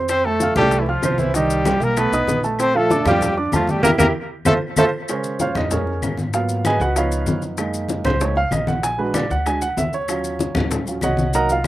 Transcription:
Already playing: F2 C4 C5 C6
0.08 C4 C5, high bongo, high conga, claves, maracas
0.25 A3 A4 A5, high conga
0.40 F4 F5 F6, high bongo, high conga, maracas
0.55 C2 G3 A3 G4 A4 A5, high bongo, high conga, low conga, claves, maracas
0.71 high bongo, high conga, maracas
0.79 E3 E4
0.86 F3 F4 F5 F6, high bongo, high conga
1.02 C2 C4 C5 C6, high bongo, low bongo, high conga, claves, maracas
1.18 E3 E4, high bongo, high conga, maracas
1.34 D#3 G3 D#4 G4 D#5, high bongo, high conga, maracas
1.50 high conga, maracas
1.65 G3 G4 G5, high bongo, high conga, claves, maracas
1.80 B1 A#3 A#4, high bongo, high conga, maracas
1.97 A3 B3 A4 B4 A5, high bongo, high conga, claves, maracas
2.12 B1 D#4 D#5 D#6, high bongo, high conga, maracas
2.27 A#1, high bongo, low bongo, high conga, maracas
2.43 A3 A4 A5, high bongo, high conga, maracas
2.59 C4 C5, high bongo, high conga, claves, maracas
2.75 F3 A3 F4 A4 F5, high conga
2.90 D4 D5 D6, high bongo, high conga, maracas
3.05 F2 F3 G3 F4 G4 F5, high bongo, high conga, low conga, claves, maracas
3.21 high bongo, high conga, low conga, maracas
3.37 D4 D5 D6, high bongo, high conga
3.52 E2 F3 A3 F4 A4 A5, high bongo, low bongo, high conga, claves, maracas
3.67 G3 G4, high bongo, high conga, maracas
3.83 E2 A#3 E4 G4 A#4, low bongo, high conga, claves, maracas
3.98 E2 A#3 E4 G4 A#4, low bongo, high conga, claves, maracas
4.45 F2 A3 F4 A4 C5, low bongo, high conga, claves, maracas
4.76 F2 A3 F4 A4 C5, low bongo, high conga, claves, maracas
5.08 C#3 G#3 C#4 G#4 A#4 C5 C#5, high bongo, high conga, claves, maracas
5.24 high conga, maracas
5.39 F4 C5 C#5 F5, high bongo, high conga, maracas
5.55 F2 D#4 D#5, high bongo, high conga, low conga, claves, maracas
5.71 C#4 G#4 A#4 C#5, high bongo, high conga, low conga, maracas
5.87 high bongo, high conga
6.02 G#2, high bongo, low bongo, high conga, claves, maracas
6.17 high bongo, high conga, maracas
6.33 F#3 A#3 B3 F4 F5, high bongo, high conga, maracas
6.49 high conga, maracas
6.65 G#4 B4 D#5 G#5, high bongo, high conga, claves, maracas
6.80 C#2 F#4 B4 D#5 F#5, high bongo, high conga, maracas
6.96 F3 B3 D#4 F4 B4 C#5 F5, high bongo, high conga, claves, maracas
7.11 high bongo, high conga, maracas
7.26 F#2, high bongo, low bongo, high conga, maracas
7.42 high bongo, high conga, maracas
7.57 G#3 A#3 D#4, high bongo, high conga, claves, maracas
7.73 high conga, maracas
7.88 high bongo, high conga, maracas
8.04 C#2 C5, high conga, low conga, claves, maracas
8.20 G#3 A#3 D#4 C#5, high bongo, high conga, maracas
8.36 F5, high bongo, high conga
8.51 A#1 D#5, high bongo, low bongo, high conga, claves, maracas
8.67 F#5, high bongo, high conga, maracas
8.83 G#5, high bongo, high conga, maracas
8.98 G#3 D4 F#4 B4, high conga
9.14 D5, high bongo, high conga, claves, maracas
9.30 D2 F#5, high bongo, high conga, maracas
9.46 G#3 D4 F#4 G#5, high bongo, high conga, claves, maracas
9.62 F#5, high bongo, high conga, maracas
9.77 D#2 E5, high bongo, low bongo, high conga, maracas
9.93 C#5, high bongo, high conga, maracas
10.08 F#3 C#4 F4, high bongo, high conga, claves, maracas
10.24 high conga, maracas
10.39 high bongo, high conga, maracas
10.55 D#2, high bongo, high conga, low conga, claves, maracas
10.71 high bongo, high conga, low conga, maracas
10.86 F#3 C#4 F4, high bongo, high conga, maracas
11.01 C2 F#4 C#5 D#5 F#5, high bongo, low bongo, high conga, claves, maracas
11.17 high bongo, high conga, maracas
11.33 F#3 A#3 D#4 A#4 D#5 F#5 A#5, high bongo, high conga, maracas
11.49 F4 F5, high conga, maracas

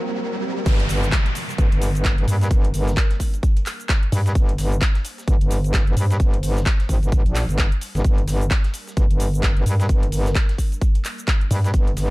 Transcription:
Already playing: G3 A#3 C4 A#4, riser
0.66 G1 G3 A#3 D4 A#4, kick, closed hi-hat, crash, downlifter, shaker
0.80 closed hi-hat
0.89 G1, snare, closed hi-hat, open hi-hat, shaker
1.03 closed hi-hat, shaker
1.12 kick, snare, clap, closed hi-hat, shaker
1.26 snare, closed hi-hat
1.35 closed hi-hat, open hi-hat, shaker
1.49 snare, closed hi-hat, shaker
1.58 G1, kick, closed hi-hat, shaker
1.72 G1, closed hi-hat
1.82 closed hi-hat, open hi-hat, shaker
1.95 closed hi-hat, shaker
2.05 kick, snare, clap, closed hi-hat, shaker
2.18 G1, closed hi-hat
2.28 G2, closed hi-hat, open hi-hat, shaker
2.41 snare, closed hi-hat, shaker
2.51 G1, kick, closed hi-hat, shaker
2.64 closed hi-hat
2.74 G1, closed hi-hat, open hi-hat, shaker
2.87 snare, closed hi-hat, shaker
2.97 kick, snare, clap, closed hi-hat, shaker
3.11 snare, closed hi-hat
3.20 kick, closed hi-hat, open hi-hat, shaker
3.34 closed hi-hat, shaker
3.43 kick, closed hi-hat, shaker
3.57 closed hi-hat
3.66 clap, closed hi-hat, open hi-hat, shaker
3.80 closed hi-hat, shaker
3.89 kick, snare, clap, closed hi-hat, shaker
4.03 closed hi-hat
4.12 G2, closed hi-hat, open hi-hat, shaker
4.26 snare, closed hi-hat, shaker
4.35 G1 C5, kick, closed hi-hat, shaker
4.49 closed hi-hat
4.58 G1, snare, closed hi-hat, open hi-hat, shaker
4.72 closed hi-hat, shaker
4.81 kick, snare, clap, closed hi-hat, shaker
4.95 snare, closed hi-hat
5.05 closed hi-hat, open hi-hat, shaker
5.18 snare, closed hi-hat, shaker
5.28 G1, kick, closed hi-hat, shaker
5.41 G1, closed hi-hat
5.51 closed hi-hat, open hi-hat, shaker
5.64 closed hi-hat, shaker
5.74 kick, snare, clap, closed hi-hat, shaker
5.87 G1, closed hi-hat
5.97 G2, closed hi-hat, open hi-hat, shaker
6.10 snare, closed hi-hat, shaker
6.20 G1, kick, closed hi-hat, shaker
6.34 closed hi-hat
6.43 G1, closed hi-hat, open hi-hat, shaker
6.57 snare, closed hi-hat, shaker
6.66 kick, snare, clap, closed hi-hat, shaker
6.80 snare, closed hi-hat
6.89 G#1, kick, closed hi-hat, open hi-hat, shaker
7.03 G1, closed hi-hat, shaker
7.12 kick, closed hi-hat, shaker
7.26 A#1, closed hi-hat
7.35 snare, clap, closed hi-hat, open hi-hat, shaker
7.49 G1, closed hi-hat, shaker
7.58 kick, snare, clap, closed hi-hat, shaker
7.72 closed hi-hat
7.81 closed hi-hat, open hi-hat, shaker
7.95 G1, snare, closed hi-hat, shaker
8.04 G1 A#4, kick, closed hi-hat, shaker
8.18 closed hi-hat
8.27 G1, snare, closed hi-hat, open hi-hat, shaker
8.41 closed hi-hat, shaker
8.51 kick, snare, clap, closed hi-hat, shaker
8.64 snare, closed hi-hat
8.74 closed hi-hat, open hi-hat, shaker
8.87 snare, closed hi-hat, shaker
8.97 G1, kick, closed hi-hat, shaker
9.11 G1, closed hi-hat
9.20 closed hi-hat, open hi-hat, shaker
9.34 closed hi-hat, shaker
9.43 kick, snare, clap, closed hi-hat, shaker
9.57 G1, closed hi-hat
9.66 G2, closed hi-hat, open hi-hat, shaker
9.80 snare, closed hi-hat, shaker
9.89 G1, kick, closed hi-hat, shaker
10.03 closed hi-hat
10.12 G1, closed hi-hat, open hi-hat, shaker
10.26 snare, closed hi-hat, shaker
10.35 kick, snare, clap, closed hi-hat, shaker
10.49 snare, closed hi-hat
10.58 kick, closed hi-hat, open hi-hat, shaker
10.72 closed hi-hat, shaker
10.81 kick, closed hi-hat, shaker
10.95 closed hi-hat
11.05 clap, closed hi-hat, open hi-hat, shaker
11.18 closed hi-hat, shaker
11.28 kick, snare, clap, closed hi-hat, shaker
11.41 closed hi-hat
11.51 G2, closed hi-hat, open hi-hat, shaker
11.64 snare, closed hi-hat, shaker
11.74 G1, kick, closed hi-hat, shaker
11.87 closed hi-hat
11.97 G1, snare, closed hi-hat, open hi-hat, shaker

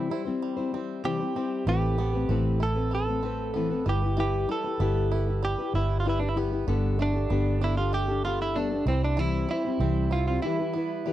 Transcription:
Already playing: E3 G3 C4 E4 C5
0.10 G3 C4 E4 C5
0.25 G3 C4 E4 C5
0.42 G3
0.57 G3 C4 E4 C5
0.73 G3 C4 E4 C5
1.04 C3 E3 G3 C4 E4 G4 C5
1.20 G3 C4 E4 C5
1.35 G3 C4 E4 C5
1.66 A1 A2 E3 A3 C4 G4 A4 B4
1.98 A3 B3 C4 A4 B4
2.13 A3 C4 A4 B4
2.29 A1 A2 E3 A3 C4 A4 B4
2.60 A3 C4 E4 A4 B4
2.75 A3 C4 A4 B4
2.91 B3 A4
3.07 A3 C4 A4 B4
3.22 A3 C4 A4 B4
3.54 A2 E3 A3 B3 C4 A4 B4
3.70 A3 C4 A4 B4
3.86 G1 E3 G3 E4 G4 B4
4.02 E4 G4 B4
4.17 E3 G3 E4 G4 B4
4.49 G3 E4 G4 A4 B4
4.64 E4 G4 B4
4.80 G1 G3 B3 E4 G4 B4
5.12 G3 E4 G4 B4
5.27 E4 G4 B4
5.43 G3 G4
5.58 E4 G4 B4
5.73 G1 G3 B3 E4 G4 B4
6.00 F4
6.05 G3 E4 G4 B4
6.20 D4 G4 B4
6.24 E4
6.29 E4
6.35 G3 B3 E4 G4 B4
6.52 E4 G4 B4
6.67 G1 D3 G3 B3 D4 G4 A4
6.98 A3 B3 D4 G4 A4
7.02 D4
7.14 D4 G4 A4
7.30 G1 G3 B3 D4 G4 A4
7.61 B3 D4 E4 G4 A4
7.77 D4 F4 G4 A4
7.93 A3 G4
8.08 D4 G4 A4
8.24 B3 D4 F4 G4 A4
8.42 E4
8.56 G3 A3 B3 D4 G4 A4
8.71 D4 G4 A4
8.86 C2 E3 G3 C4 E4 C5
9.04 D4
9.17 C3 E3 G3 C4 E4 C5
9.49 G3 C4 E4
9.53 C5
9.65 G3 C4 E4 C5
9.80 C2 C3 E3 G3 C4 E4 C5
10.11 G3 C4 E4 F4
10.15 C5
10.27 G3 C4 E4 F4 C5
10.42 E3 G3 E4 G4
10.47 B4
10.59 E4 G4 B4
10.73 G3 B3 E4 G4
10.78 B4
11.05 E3 G3 E4 G4 B4

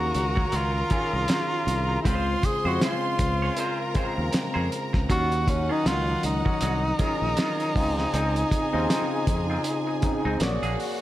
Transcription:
Already playing: D#2 D#3 C#4 F4 F#4 G#4 A#4 F5 A#5
0.14 C#2, muted clean electric guitar stroke, closed hi-hat
0.36 F#3 C#4 F#4, kick
0.52 C#2 F#3 C#4 F4 F#4, closed hi-hat
0.74 muted clean electric guitar stroke
0.90 D#3 F#3 C#4 F4 G#4, kick, closed hi-hat
1.13 C2, muted clean electric guitar stroke
1.28 F#3 C#4 F4, snare, closed hi-hat
1.66 C2, muted clean electric guitar stroke, closed hi-hat
1.89 muted clean electric guitar stroke
2.02 C#2 C#3 G#3 C#4 E4 G#4, kick, closed hi-hat
2.06 C4 F4 C5 C6
2.43 G#4, muted clean electric guitar stroke, kick, closed hi-hat
2.64 F2 C#3 G#3 C4 C#4 F4 F#4 G#4 C5
2.81 C#4 F4 G#4 C5, snare, closed hi-hat
3.19 C#2, muted clean electric guitar stroke, kick, closed hi-hat
3.42 C#4 G#4 C#5
3.57 C#4 G#4 A#4 C5 A#5, closed hi-hat
3.80 muted clean electric guitar stroke
3.94 C#3 G#3 C4 C#4 F4 G#4 C5, muted fingered electric bass stroke, kick, closed hi-hat
4.17 D#2, muted clean electric guitar stroke
4.32 muted clean electric guitar stroke, muted fingered electric bass stroke, snare, closed hi-hat
4.54 F2 C#4 G#4 C5
4.70 muted clean electric guitar stroke, closed hi-hat
4.93 C#2, muted clean electric guitar stroke, kick, snare
5.09 D#2 D#3 F#3 C#4 D#4 F4 F#4 F#5, kick, closed hi-hat
5.32 closed hi-hat
5.47 C#4, muted clean electric guitar stroke, kick, closed hi-hat
5.69 D#3 F#3 C#4 D#4 F4
5.85 C#2 F#3 C#4 F4, snare, closed hi-hat
6.23 C#2 D#4, muted clean electric guitar stroke, closed hi-hat
6.45 F#3 C#4 F#4, kick
6.61 C2 F#3 C#4 F#4, closed hi-hat
6.83 muted clean electric guitar stroke
6.98 D#3 F#3 C#4 F4 G#4 A#4 A#5, kick, closed hi-hat
7.21 A#1, muted clean electric guitar stroke
7.37 F#3 C#4 F4, snare, closed hi-hat
7.60 closed hi-hat
7.74 C#2 C#3 C4 D#4 F4 G#4 G#5, muted clean electric guitar stroke, kick, open hi-hat
7.97 muted clean electric guitar stroke, snare
8.13 C#2 F3 C4 D#4, closed hi-hat
8.36 closed hi-hat
8.51 muted clean electric guitar stroke, kick, closed hi-hat
8.72 D#2 C#3 F3 C4 D#4 F4
8.89 F3 C4 D#4, snare, closed hi-hat
9.27 F2, muted clean electric guitar stroke, kick, closed hi-hat
9.50 F3 C4 F4
9.64 muted clean electric guitar stroke, closed hi-hat
9.87 muted clean electric guitar stroke
10.02 C#3 C4 D#4 G#4, muted fingered electric bass stroke, kick, closed hi-hat
10.25 C#2 F3 C4 D#4
10.40 A#1 A#3 F#4 G#4 C#5 D5 F#5, muted clean electric guitar stroke, snare, closed hi-hat
10.62 A#1 A#3 D4 G#4, closed hi-hat
10.79 muted clean electric guitar stroke, open hi-hat

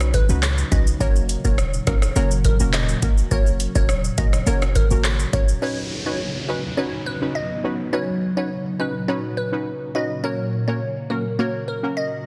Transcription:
Already playing: B1 A#2 C#3 F#3 C#4 D#4 F#4 B4
0.00 cross-stick, shaker
0.14 B4, kick, closed hi-hat, high bongo, shaker
0.29 C#2 C#4 D#4 F#4 B4, shaker
0.43 cross-stick, clap, high bongo, shaker
0.58 shaker
0.71 B1 C#4 D#4 F#4 B4 D#5, kick, closed hi-hat, low bongo, shaker
0.87 shaker
1.00 F#1 F#3 A#3 C#4 F#4 A#4 C#5, kick, shaker
1.16 shaker
1.29 closed hi-hat, shaker
1.44 E1 A#3 C#4 F#4 A#4 C#5, kick, shaker
1.58 cross-stick, shaker
1.74 shaker
1.87 F#1 A#3 C#4 F#4 A#4, kick, cross-stick, closed hi-hat, low bongo, shaker
2.02 cross-stick, high bongo, shaker
2.16 F#1 A#3 C#4 F#4 A#4 C#5, high bongo, shaker
2.31 shaker
2.45 A#4, kick, closed hi-hat, high bongo, shaker
2.60 E1 A#3 C#4 F#4 A#4, shaker
2.73 D#5, cross-stick, clap, high bongo, shaker
2.89 shaker
3.02 F#1 A#3 C#4 F#4 A#4, kick, closed hi-hat, low bongo, shaker
3.18 shaker
3.31 F#1 A#3 C#4 F#4 G#4 A#4 C#5, kick, shaker
3.47 shaker
3.60 closed hi-hat, shaker
3.75 E1 A#3 C#4 F#4 A#4 C#5, kick, shaker
3.89 cross-stick, shaker
4.04 shaker
4.18 F#1 A#3 C#4 F#4 A#4 D#5, kick, closed hi-hat, low bongo, shaker
4.33 cross-stick, high bongo, shaker
4.46 F#1 A#3 C#4 F#4 A#4 C#5, high bongo, shaker
4.62 cross-stick, shaker
4.75 A#4, kick, closed hi-hat, high bongo, shaker
4.91 G#1 A#3 C#4 F#4 A#4, shaker
5.04 cross-stick, clap, high bongo, shaker
5.19 shaker
5.33 F#1 A#3 C#4 F#4 A#4 C#5, kick, closed hi-hat, low bongo, shaker
5.49 shaker
5.62 C#3 F#3 B3 C#4 D#4 F#4 B4 C#5, downlifter
6.06 C#4 D#4 F#4 B4 C#5
6.48 C#4 D#4 F#4 B4
6.77 C#4 D#4 F#4 B4 C#5
7.06 B4
7.21 C#4 D#4 F#4 B4
7.35 D#5
7.64 C#4 D#4 F#4 B4
7.93 A#2 C#4 D#4 F#4 B4 C#5
8.37 C#4 D#4 F#4 B4 C#5
8.79 C#4 D#4 F#4 B4
9.08 C#4 D#4 F#4 B4 C#5
9.37 B4
9.52 C#4 D#4 F#4 B4
9.95 C#4 D#4 F#4 B4 D#5
10.23 A#3 C#4 F#4 A#4 C#5
10.68 A#3 C#4 F#4 A#4 C#5
11.10 A#3 C#4 F#4 A#4
11.39 A#3 C#4 F#4 A#4 C#5
11.68 A#4
11.83 A#3 C#4 F#4 A#4
11.97 D#5

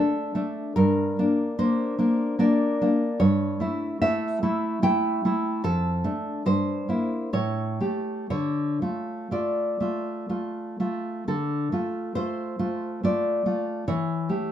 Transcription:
Already playing: A3 D4 A4
0.35 A3 D4
0.76 G2 A#4
1.19 A#3 D4
1.59 A#3 D4 C5
1.99 A#3 D4
2.39 A#3 D4 D5
2.82 A#3 D4
3.20 G2 C#5
3.60 A3 E4
4.02 A3 E4 E5
4.43 A3 E4
4.82 A3 E4 G5
5.25 A3 E4
5.64 F2 A4
6.04 A3 D4
6.46 G2 C5
6.89 A#3 E4
7.33 A2 C#5
7.80 A3 G4
8.30 D3 C#5
8.82 A3 F4
9.31 A3 F4 D5
9.80 A3 F4
10.29 A3 F4
10.80 A3 F4
11.28 D3 A4
11.72 A3 F4
12.15 A3 F4 C5
12.59 A3 F4
13.04 A3 F4 D5
13.46 A3 F4
13.88 E3 C#5
14.29 A3 G4

